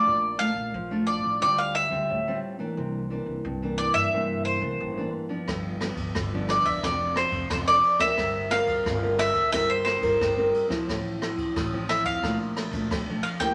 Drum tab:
RD |----------------|----------------|x-xxx-xxx-xxx-xx|x-xxx-xxx-xxx-xx|
SD |----------------|----------------|r-r-r-r-r-r-r--r|r-r-r-r-r-r-r--r|
BD |----------------|----------------|o--oo--oo--oo--o|o--oo--oo--oo--o|

RD |x-xxx-xxx-xxx-xx|
SD |r-r-r-r-r-r-r--r|
BD |o--oo--oo--oo--o|